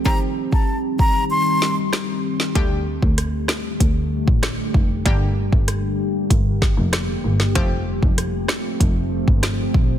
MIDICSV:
0, 0, Header, 1, 6, 480
1, 0, Start_track
1, 0, Tempo, 625000
1, 43, Time_signature, 4, 2, 24, 8
1, 7670, End_track
2, 0, Start_track
2, 0, Title_t, "Flute"
2, 0, Program_c, 0, 73
2, 44, Note_on_c, 0, 82, 107
2, 140, Note_off_c, 0, 82, 0
2, 404, Note_on_c, 0, 81, 75
2, 596, Note_off_c, 0, 81, 0
2, 762, Note_on_c, 0, 82, 85
2, 955, Note_off_c, 0, 82, 0
2, 1001, Note_on_c, 0, 84, 100
2, 1341, Note_off_c, 0, 84, 0
2, 7670, End_track
3, 0, Start_track
3, 0, Title_t, "Ambient pad"
3, 0, Program_c, 1, 92
3, 0, Note_on_c, 1, 60, 80
3, 0, Note_on_c, 1, 67, 92
3, 43, Note_on_c, 1, 51, 83
3, 43, Note_on_c, 1, 55, 78
3, 1933, Note_off_c, 1, 60, 0
3, 1933, Note_off_c, 1, 67, 0
3, 1944, Note_off_c, 1, 51, 0
3, 1944, Note_off_c, 1, 55, 0
3, 1963, Note_on_c, 1, 50, 85
3, 1963, Note_on_c, 1, 55, 77
3, 1963, Note_on_c, 1, 57, 82
3, 1963, Note_on_c, 1, 67, 98
3, 3864, Note_off_c, 1, 57, 0
3, 3884, Note_on_c, 1, 58, 80
3, 5772, Note_off_c, 1, 55, 0
3, 5773, Note_off_c, 1, 50, 0
3, 5784, Note_off_c, 1, 58, 0
3, 5804, Note_on_c, 1, 53, 84
3, 5804, Note_on_c, 1, 57, 81
3, 5804, Note_on_c, 1, 60, 82
3, 7670, Note_off_c, 1, 53, 0
3, 7670, Note_off_c, 1, 57, 0
3, 7670, Note_off_c, 1, 60, 0
3, 7670, Note_off_c, 1, 67, 0
3, 7670, End_track
4, 0, Start_track
4, 0, Title_t, "Synth pluck"
4, 0, Program_c, 2, 84
4, 41, Note_on_c, 2, 51, 97
4, 42, Note_on_c, 2, 55, 90
4, 43, Note_on_c, 2, 60, 85
4, 45, Note_on_c, 2, 67, 106
4, 483, Note_off_c, 2, 51, 0
4, 484, Note_off_c, 2, 55, 0
4, 485, Note_off_c, 2, 60, 0
4, 486, Note_off_c, 2, 67, 0
4, 1960, Note_on_c, 2, 50, 98
4, 1961, Note_on_c, 2, 55, 89
4, 1963, Note_on_c, 2, 57, 88
4, 1964, Note_on_c, 2, 67, 105
4, 2403, Note_off_c, 2, 50, 0
4, 2404, Note_off_c, 2, 55, 0
4, 2405, Note_off_c, 2, 57, 0
4, 2405, Note_off_c, 2, 67, 0
4, 3881, Note_on_c, 2, 50, 100
4, 3883, Note_on_c, 2, 55, 87
4, 3884, Note_on_c, 2, 58, 91
4, 3886, Note_on_c, 2, 67, 106
4, 4324, Note_off_c, 2, 50, 0
4, 4325, Note_off_c, 2, 55, 0
4, 4325, Note_off_c, 2, 58, 0
4, 4326, Note_off_c, 2, 67, 0
4, 5800, Note_on_c, 2, 53, 97
4, 5803, Note_on_c, 2, 57, 92
4, 5803, Note_on_c, 2, 60, 93
4, 5805, Note_on_c, 2, 67, 111
4, 6243, Note_off_c, 2, 53, 0
4, 6244, Note_off_c, 2, 57, 0
4, 6245, Note_off_c, 2, 60, 0
4, 6246, Note_off_c, 2, 67, 0
4, 7670, End_track
5, 0, Start_track
5, 0, Title_t, "Double bass"
5, 0, Program_c, 3, 43
5, 1962, Note_on_c, 3, 38, 101
5, 2255, Note_off_c, 3, 38, 0
5, 2323, Note_on_c, 3, 38, 98
5, 2615, Note_off_c, 3, 38, 0
5, 2921, Note_on_c, 3, 38, 100
5, 3214, Note_off_c, 3, 38, 0
5, 3284, Note_on_c, 3, 33, 82
5, 3381, Note_off_c, 3, 33, 0
5, 3643, Note_on_c, 3, 29, 86
5, 3838, Note_off_c, 3, 29, 0
5, 3883, Note_on_c, 3, 31, 110
5, 4175, Note_off_c, 3, 31, 0
5, 4244, Note_on_c, 3, 31, 92
5, 4536, Note_off_c, 3, 31, 0
5, 4842, Note_on_c, 3, 31, 99
5, 5135, Note_off_c, 3, 31, 0
5, 5204, Note_on_c, 3, 29, 94
5, 5301, Note_off_c, 3, 29, 0
5, 5564, Note_on_c, 3, 31, 92
5, 5758, Note_off_c, 3, 31, 0
5, 5803, Note_on_c, 3, 29, 108
5, 6095, Note_off_c, 3, 29, 0
5, 6164, Note_on_c, 3, 29, 98
5, 6456, Note_off_c, 3, 29, 0
5, 6762, Note_on_c, 3, 29, 108
5, 7055, Note_off_c, 3, 29, 0
5, 7124, Note_on_c, 3, 31, 92
5, 7221, Note_off_c, 3, 31, 0
5, 7483, Note_on_c, 3, 34, 95
5, 7670, Note_off_c, 3, 34, 0
5, 7670, End_track
6, 0, Start_track
6, 0, Title_t, "Drums"
6, 43, Note_on_c, 9, 36, 119
6, 120, Note_off_c, 9, 36, 0
6, 403, Note_on_c, 9, 36, 83
6, 480, Note_off_c, 9, 36, 0
6, 763, Note_on_c, 9, 36, 78
6, 840, Note_off_c, 9, 36, 0
6, 1244, Note_on_c, 9, 38, 65
6, 1321, Note_off_c, 9, 38, 0
6, 1480, Note_on_c, 9, 37, 84
6, 1484, Note_off_c, 9, 37, 0
6, 1484, Note_on_c, 9, 37, 88
6, 1484, Note_on_c, 9, 38, 112
6, 1561, Note_off_c, 9, 37, 0
6, 1561, Note_off_c, 9, 38, 0
6, 1842, Note_on_c, 9, 38, 62
6, 1918, Note_off_c, 9, 38, 0
6, 1962, Note_on_c, 9, 36, 126
6, 1962, Note_on_c, 9, 42, 76
6, 2039, Note_off_c, 9, 36, 0
6, 2039, Note_off_c, 9, 42, 0
6, 2323, Note_on_c, 9, 36, 85
6, 2400, Note_off_c, 9, 36, 0
6, 2441, Note_on_c, 9, 42, 72
6, 2442, Note_on_c, 9, 37, 67
6, 2518, Note_off_c, 9, 42, 0
6, 2519, Note_off_c, 9, 37, 0
6, 2675, Note_on_c, 9, 37, 97
6, 2680, Note_on_c, 9, 38, 112
6, 2752, Note_off_c, 9, 37, 0
6, 2756, Note_off_c, 9, 38, 0
6, 2921, Note_on_c, 9, 36, 92
6, 2922, Note_on_c, 9, 42, 80
6, 2998, Note_off_c, 9, 36, 0
6, 2999, Note_off_c, 9, 42, 0
6, 3284, Note_on_c, 9, 36, 96
6, 3361, Note_off_c, 9, 36, 0
6, 3400, Note_on_c, 9, 37, 89
6, 3402, Note_on_c, 9, 42, 76
6, 3404, Note_off_c, 9, 37, 0
6, 3404, Note_on_c, 9, 37, 87
6, 3404, Note_on_c, 9, 38, 112
6, 3478, Note_off_c, 9, 42, 0
6, 3481, Note_off_c, 9, 37, 0
6, 3481, Note_off_c, 9, 38, 0
6, 3643, Note_on_c, 9, 36, 103
6, 3720, Note_off_c, 9, 36, 0
6, 3883, Note_on_c, 9, 36, 122
6, 3883, Note_on_c, 9, 42, 75
6, 3960, Note_off_c, 9, 36, 0
6, 3960, Note_off_c, 9, 42, 0
6, 4243, Note_on_c, 9, 36, 86
6, 4320, Note_off_c, 9, 36, 0
6, 4362, Note_on_c, 9, 37, 67
6, 4362, Note_on_c, 9, 42, 73
6, 4439, Note_off_c, 9, 37, 0
6, 4439, Note_off_c, 9, 42, 0
6, 4842, Note_on_c, 9, 36, 96
6, 4843, Note_on_c, 9, 42, 81
6, 4919, Note_off_c, 9, 36, 0
6, 4920, Note_off_c, 9, 42, 0
6, 5083, Note_on_c, 9, 36, 88
6, 5084, Note_on_c, 9, 38, 68
6, 5160, Note_off_c, 9, 36, 0
6, 5161, Note_off_c, 9, 38, 0
6, 5320, Note_on_c, 9, 37, 89
6, 5322, Note_on_c, 9, 42, 75
6, 5325, Note_off_c, 9, 37, 0
6, 5325, Note_on_c, 9, 37, 92
6, 5325, Note_on_c, 9, 38, 114
6, 5399, Note_off_c, 9, 42, 0
6, 5401, Note_off_c, 9, 37, 0
6, 5401, Note_off_c, 9, 38, 0
6, 5681, Note_on_c, 9, 38, 64
6, 5758, Note_off_c, 9, 38, 0
6, 5802, Note_on_c, 9, 42, 76
6, 5803, Note_on_c, 9, 36, 127
6, 5879, Note_off_c, 9, 42, 0
6, 5880, Note_off_c, 9, 36, 0
6, 6164, Note_on_c, 9, 36, 88
6, 6240, Note_off_c, 9, 36, 0
6, 6282, Note_on_c, 9, 37, 67
6, 6282, Note_on_c, 9, 42, 73
6, 6359, Note_off_c, 9, 37, 0
6, 6359, Note_off_c, 9, 42, 0
6, 6516, Note_on_c, 9, 37, 99
6, 6521, Note_on_c, 9, 38, 117
6, 6593, Note_off_c, 9, 37, 0
6, 6598, Note_off_c, 9, 38, 0
6, 6762, Note_on_c, 9, 36, 91
6, 6763, Note_on_c, 9, 42, 82
6, 6839, Note_off_c, 9, 36, 0
6, 6840, Note_off_c, 9, 42, 0
6, 7124, Note_on_c, 9, 36, 98
6, 7201, Note_off_c, 9, 36, 0
6, 7241, Note_on_c, 9, 37, 85
6, 7242, Note_on_c, 9, 42, 75
6, 7245, Note_off_c, 9, 37, 0
6, 7245, Note_on_c, 9, 37, 89
6, 7245, Note_on_c, 9, 38, 115
6, 7319, Note_off_c, 9, 42, 0
6, 7322, Note_off_c, 9, 37, 0
6, 7322, Note_off_c, 9, 38, 0
6, 7484, Note_on_c, 9, 36, 103
6, 7560, Note_off_c, 9, 36, 0
6, 7670, End_track
0, 0, End_of_file